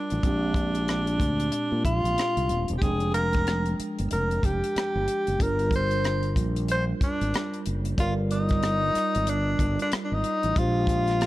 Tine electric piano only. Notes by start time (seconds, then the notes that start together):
Already playing: G3 D4 F4 A#4
0.23 A#2 G#3 C4 D4 G4
2.82 F3 G#3 D4 G5
5.39 G3 D4 F4 A#4
7.97 G3 F4 A#4 D5
10.56 A#2 G#3 D4 G4 C5